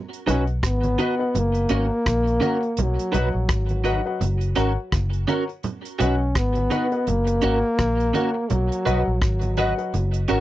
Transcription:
0.13 closed hi-hat
0.26 fingered electric bass B1, trombone C#4, clean electric guitar D#4 F#4 B4, grand piano F#4 B4 D#5 F#5, closed hi-hat, low conga
0.47 closed hi-hat
0.63 fingered electric bass G#1, trombone B3, kick, cross-stick, closed hi-hat
0.83 closed hi-hat, high conga
0.98 clean electric guitar D#4 F#4 B4, grand piano F#4 B4 D#5 F#5, closed hi-hat, high conga
1.19 grand piano F#4 B4 D#5 F#5
1.35 fingered electric bass F#1, trombone A#3, closed hi-hat, low conga
1.55 closed hi-hat
1.69 fingered electric bass G#1, clean electric guitar C#4 F#4 A#4, grand piano F#4 A#4 C#5 F#5, closed hi-hat
2.06 fingered electric bass A#1, kick, cross-stick, closed hi-hat, high conga
2.27 closed hi-hat
2.40 clean electric guitar C#4 F#4 A#4, grand piano F#4 A#4 C#5 F#5, closed hi-hat, high conga
2.61 muted clean electric guitar stroke, closed hi-hat
2.77 fingered electric bass B1, closed hi-hat, low conga
2.82 trombone F#3
2.99 closed hi-hat
3.12 fingered electric bass B1, clean electric guitar D#4 F#4 B4, grand piano F#4 B4 D#5 F#5, closed hi-hat, low conga
3.35 fingered electric bass A#1
3.49 fingered electric bass G#1, trombone F#3, kick, cross-stick, closed hi-hat
3.69 closed hi-hat, high conga
3.84 clean electric guitar D#4 F#4 B4, grand piano F#4 B4 D#5 F#5, closed hi-hat, high conga
4.05 grand piano F#4 B4 D#5 F#5
4.21 fingered electric bass F#1, closed hi-hat, low conga
4.41 closed hi-hat
4.55 fingered electric bass G#1, clean electric guitar C#4 F#4 A#4, grand piano F#4 A#4 C#5 F#5, cross-stick, closed hi-hat
4.92 fingered electric bass F#1, kick, cross-stick, closed hi-hat, high conga
5.13 closed hi-hat
5.28 clean electric guitar C#4 F#4 A#4, grand piano F#4 A#4 C#5 F#5, closed hi-hat, high conga
5.48 muted clean electric guitar stroke, closed hi-hat
5.63 closed hi-hat, low conga
5.85 closed hi-hat
5.99 fingered electric bass B1, trombone C#4, clean electric guitar D#4 F#4 B4, grand piano F#4 B4 D#5 F#5, closed hi-hat, low conga
6.35 fingered electric bass G#1, trombone B3, kick, cross-stick, closed hi-hat
6.55 closed hi-hat, high conga
6.70 clean electric guitar D#4 F#4 B4, grand piano F#4 B4 D#5 F#5, closed hi-hat, high conga
6.92 grand piano F#4 B4 D#5 F#5, closed hi-hat
7.07 fingered electric bass F#1, trombone A#3, closed hi-hat, low conga
7.27 muted clean electric guitar stroke, closed hi-hat
7.42 fingered electric bass G#1, clean electric guitar C#4 F#4 A#4, grand piano F#4 A#4 C#5 F#5, closed hi-hat
7.79 fingered electric bass A#1, kick, cross-stick, closed hi-hat, high conga
8.00 closed hi-hat
8.13 clean electric guitar C#4 F#4 A#4, grand piano F#4 A#4 C#5 F#5, closed hi-hat, high conga
8.35 muted clean electric guitar stroke
8.50 fingered electric bass B1, trombone F#3, closed hi-hat, low conga
8.72 closed hi-hat
8.85 fingered electric bass B1, clean electric guitar F#4 B4 D#5, grand piano F#4 B4 D#5 F#5, closed hi-hat, low conga
9.07 fingered electric bass A#1
9.22 fingered electric bass G#1, trombone F#3, kick, cross-stick, closed hi-hat
9.41 closed hi-hat, high conga
9.57 grand piano F#4 B4 D#5 F#5, clean electric guitar F#4 B4 D#5, closed hi-hat, high conga
9.77 grand piano F#4 B4 D#5 F#5, closed hi-hat
9.94 fingered electric bass F#1, closed hi-hat, low conga
10.14 closed hi-hat
10.28 fingered electric bass G#1, clean electric guitar C#4 F#4 A#4, grand piano F#4 A#4 C#5 F#5, closed hi-hat

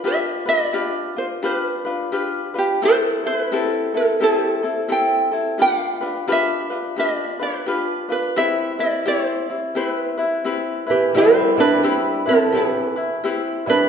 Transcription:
0.04 ukulele D4 F4 G4 B4 E5
0.46 ukulele D4 F4 B4 D5
0.73 ukulele D4 F4 G4 B4
1.17 ukulele D4 F4 C5
1.43 ukulele D4 F4 G4 B4
1.85 ukulele D4 F4 B4
2.12 ukulele D4 F4 G4 B4
2.54 ukulele D4 F4 B4
2.58 ukulele G4
2.82 ukulele C4 E4 G4 A4 C5
3.24 ukulele C4 E4 A4 C5
3.38 ukulele B4
3.52 ukulele C4 E4 G4 A4
3.94 ukulele C4 E4 A4
4.20 ukulele C4 E4 G4 A4
4.63 ukulele C4 E4 A4
4.88 ukulele C4 E4 G4 A4 G5
5.31 ukulele C4 E4 A4
5.58 ukulele D4 F4 G4 B4 F5
6.01 ukulele D4 F4 B4
6.28 ukulele D4 F4 G4 B4
6.32 ukulele E5
6.70 ukulele D4 F4 B4
6.96 ukulele D4 F4 G4 B4 D#5
7.17 ukulele D5
7.39 ukulele D4 F4 B4
7.66 ukulele D4 F4 G4 B4
8.09 ukulele D4 F4 B4
8.36 ukulele C4 E4 G4 B4 E5
8.79 ukulele C4 E4 B4 D5
9.06 ukulele C4 E4 G4 C5
9.50 ukulele C4 E4
9.75 ukulele C4 E4 G4 B4 C5
9.87 ukulele B4
10.18 ukulele C4 E4 B4
10.44 ukulele C4 E4 G4 B4
10.87 steel-string acoustic guitar E3, ukulele E4 B4
10.91 ukulele G4
11.14 steel-string acoustic guitar G3, ukulele C4 E4 G4 C5
11.57 steel-string acoustic guitar G3, ukulele C4 D4 E4 B4
11.83 ukulele C4 E4 G4 B4
12.26 steel-string acoustic guitar F3, ukulele C4 E4 A4 B4
12.30 ukulele C4
12.52 steel-string acoustic guitar E3, ukulele E4 G4 B4
12.57 ukulele G4 B4
12.96 ukulele E4 B4
13.24 ukulele C4 E4 G4 B4
13.66 steel-string acoustic guitar G3, ukulele C4 D4 E4 B4

